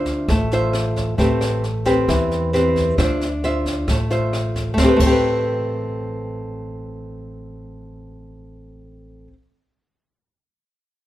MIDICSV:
0, 0, Header, 1, 4, 480
1, 0, Start_track
1, 0, Key_signature, 0, "minor"
1, 0, Tempo, 448430
1, 1267, Time_signature, 4, 2, 24, 8
1, 11839, End_track
2, 0, Start_track
2, 0, Title_t, "Nylon-string guitar"
2, 0, Program_c, 0, 24
2, 0, Note_on_c, 0, 62, 54
2, 0, Note_on_c, 0, 65, 57
2, 0, Note_on_c, 0, 72, 53
2, 0, Note_on_c, 0, 76, 49
2, 285, Note_off_c, 0, 62, 0
2, 318, Note_on_c, 0, 57, 60
2, 507, Note_off_c, 0, 65, 0
2, 511, Note_off_c, 0, 72, 0
2, 511, Note_off_c, 0, 76, 0
2, 565, Note_on_c, 0, 65, 59
2, 569, Note_on_c, 0, 72, 64
2, 575, Note_on_c, 0, 76, 62
2, 1238, Note_off_c, 0, 72, 0
2, 1239, Note_off_c, 0, 65, 0
2, 1239, Note_off_c, 0, 76, 0
2, 1249, Note_off_c, 0, 57, 0
2, 1263, Note_on_c, 0, 57, 53
2, 1271, Note_on_c, 0, 60, 47
2, 1274, Note_on_c, 0, 67, 52
2, 1279, Note_on_c, 0, 71, 59
2, 1744, Note_off_c, 0, 67, 0
2, 1745, Note_off_c, 0, 60, 0
2, 1750, Note_off_c, 0, 71, 0
2, 1986, Note_on_c, 0, 60, 62
2, 1991, Note_on_c, 0, 67, 65
2, 1997, Note_on_c, 0, 71, 61
2, 2202, Note_off_c, 0, 57, 0
2, 2238, Note_on_c, 0, 52, 60
2, 2668, Note_off_c, 0, 60, 0
2, 2671, Note_off_c, 0, 67, 0
2, 2674, Note_off_c, 0, 71, 0
2, 2711, Note_on_c, 0, 60, 50
2, 2718, Note_on_c, 0, 71, 50
2, 2719, Note_on_c, 0, 67, 48
2, 3151, Note_off_c, 0, 60, 0
2, 3153, Note_off_c, 0, 67, 0
2, 3154, Note_off_c, 0, 71, 0
2, 3169, Note_off_c, 0, 52, 0
2, 3192, Note_on_c, 0, 62, 50
2, 3193, Note_on_c, 0, 65, 50
2, 3200, Note_on_c, 0, 72, 47
2, 3201, Note_on_c, 0, 76, 58
2, 3498, Note_off_c, 0, 65, 0
2, 3500, Note_off_c, 0, 72, 0
2, 3503, Note_off_c, 0, 76, 0
2, 3680, Note_on_c, 0, 65, 53
2, 3682, Note_on_c, 0, 72, 51
2, 3687, Note_on_c, 0, 76, 58
2, 4127, Note_off_c, 0, 62, 0
2, 4168, Note_on_c, 0, 57, 54
2, 4355, Note_off_c, 0, 72, 0
2, 4356, Note_off_c, 0, 65, 0
2, 4359, Note_off_c, 0, 76, 0
2, 4394, Note_on_c, 0, 65, 50
2, 4400, Note_on_c, 0, 72, 52
2, 4405, Note_on_c, 0, 76, 58
2, 5059, Note_off_c, 0, 57, 0
2, 5071, Note_on_c, 0, 57, 59
2, 5073, Note_off_c, 0, 65, 0
2, 5076, Note_off_c, 0, 72, 0
2, 5078, Note_off_c, 0, 76, 0
2, 5128, Note_on_c, 0, 60, 65
2, 5184, Note_on_c, 0, 67, 68
2, 5228, Note_on_c, 0, 71, 70
2, 5260, Note_off_c, 0, 57, 0
2, 5313, Note_on_c, 0, 57, 60
2, 5345, Note_off_c, 0, 67, 0
2, 5345, Note_off_c, 0, 71, 0
2, 5370, Note_off_c, 0, 60, 0
2, 5374, Note_on_c, 0, 60, 61
2, 5421, Note_on_c, 0, 67, 64
2, 5474, Note_on_c, 0, 71, 66
2, 9923, Note_off_c, 0, 57, 0
2, 9985, Note_off_c, 0, 60, 0
2, 10032, Note_off_c, 0, 67, 0
2, 10084, Note_off_c, 0, 71, 0
2, 11839, End_track
3, 0, Start_track
3, 0, Title_t, "Upright bass"
3, 0, Program_c, 1, 32
3, 0, Note_on_c, 1, 38, 89
3, 263, Note_off_c, 1, 38, 0
3, 304, Note_on_c, 1, 33, 94
3, 1223, Note_off_c, 1, 33, 0
3, 1268, Note_on_c, 1, 33, 87
3, 2184, Note_off_c, 1, 33, 0
3, 2232, Note_on_c, 1, 40, 98
3, 3147, Note_off_c, 1, 40, 0
3, 3192, Note_on_c, 1, 38, 91
3, 4107, Note_off_c, 1, 38, 0
3, 4151, Note_on_c, 1, 33, 92
3, 5067, Note_off_c, 1, 33, 0
3, 5118, Note_on_c, 1, 33, 80
3, 5247, Note_off_c, 1, 33, 0
3, 5351, Note_on_c, 1, 33, 85
3, 9918, Note_off_c, 1, 33, 0
3, 11839, End_track
4, 0, Start_track
4, 0, Title_t, "Drums"
4, 61, Note_on_c, 9, 38, 24
4, 63, Note_on_c, 9, 36, 22
4, 168, Note_off_c, 9, 38, 0
4, 171, Note_off_c, 9, 36, 0
4, 304, Note_on_c, 9, 36, 53
4, 306, Note_on_c, 9, 37, 54
4, 306, Note_on_c, 9, 38, 23
4, 411, Note_off_c, 9, 36, 0
4, 413, Note_off_c, 9, 37, 0
4, 413, Note_off_c, 9, 38, 0
4, 552, Note_on_c, 9, 38, 23
4, 659, Note_off_c, 9, 38, 0
4, 786, Note_on_c, 9, 37, 54
4, 786, Note_on_c, 9, 38, 21
4, 893, Note_off_c, 9, 37, 0
4, 893, Note_off_c, 9, 38, 0
4, 1026, Note_on_c, 9, 36, 21
4, 1031, Note_on_c, 9, 38, 21
4, 1133, Note_off_c, 9, 36, 0
4, 1138, Note_off_c, 9, 38, 0
4, 1266, Note_on_c, 9, 36, 50
4, 1273, Note_on_c, 9, 38, 22
4, 1374, Note_off_c, 9, 36, 0
4, 1380, Note_off_c, 9, 38, 0
4, 1509, Note_on_c, 9, 37, 56
4, 1509, Note_on_c, 9, 38, 25
4, 1617, Note_off_c, 9, 37, 0
4, 1617, Note_off_c, 9, 38, 0
4, 1753, Note_on_c, 9, 38, 23
4, 1860, Note_off_c, 9, 38, 0
4, 1986, Note_on_c, 9, 36, 22
4, 1986, Note_on_c, 9, 38, 21
4, 2093, Note_off_c, 9, 36, 0
4, 2093, Note_off_c, 9, 38, 0
4, 2227, Note_on_c, 9, 36, 55
4, 2234, Note_on_c, 9, 37, 49
4, 2234, Note_on_c, 9, 38, 23
4, 2334, Note_off_c, 9, 36, 0
4, 2341, Note_off_c, 9, 37, 0
4, 2341, Note_off_c, 9, 38, 0
4, 2476, Note_on_c, 9, 38, 23
4, 2583, Note_off_c, 9, 38, 0
4, 2717, Note_on_c, 9, 38, 22
4, 2824, Note_off_c, 9, 38, 0
4, 2951, Note_on_c, 9, 36, 21
4, 2955, Note_on_c, 9, 38, 19
4, 3058, Note_off_c, 9, 36, 0
4, 3062, Note_off_c, 9, 38, 0
4, 3190, Note_on_c, 9, 36, 53
4, 3192, Note_on_c, 9, 37, 61
4, 3192, Note_on_c, 9, 38, 23
4, 3297, Note_off_c, 9, 36, 0
4, 3299, Note_off_c, 9, 37, 0
4, 3299, Note_off_c, 9, 38, 0
4, 3438, Note_on_c, 9, 38, 25
4, 3545, Note_off_c, 9, 38, 0
4, 3679, Note_on_c, 9, 38, 22
4, 3786, Note_off_c, 9, 38, 0
4, 3913, Note_on_c, 9, 36, 23
4, 3916, Note_on_c, 9, 38, 24
4, 4020, Note_off_c, 9, 36, 0
4, 4023, Note_off_c, 9, 38, 0
4, 4152, Note_on_c, 9, 37, 53
4, 4152, Note_on_c, 9, 38, 22
4, 4153, Note_on_c, 9, 36, 54
4, 4259, Note_off_c, 9, 37, 0
4, 4259, Note_off_c, 9, 38, 0
4, 4260, Note_off_c, 9, 36, 0
4, 4397, Note_on_c, 9, 38, 20
4, 4504, Note_off_c, 9, 38, 0
4, 4637, Note_on_c, 9, 37, 50
4, 4637, Note_on_c, 9, 38, 23
4, 4744, Note_off_c, 9, 37, 0
4, 4744, Note_off_c, 9, 38, 0
4, 4872, Note_on_c, 9, 36, 20
4, 4877, Note_on_c, 9, 38, 21
4, 4979, Note_off_c, 9, 36, 0
4, 4984, Note_off_c, 9, 38, 0
4, 5112, Note_on_c, 9, 36, 65
4, 5116, Note_on_c, 9, 38, 53
4, 5219, Note_off_c, 9, 36, 0
4, 5223, Note_off_c, 9, 38, 0
4, 5350, Note_on_c, 9, 36, 76
4, 5350, Note_on_c, 9, 49, 61
4, 5457, Note_off_c, 9, 36, 0
4, 5457, Note_off_c, 9, 49, 0
4, 11839, End_track
0, 0, End_of_file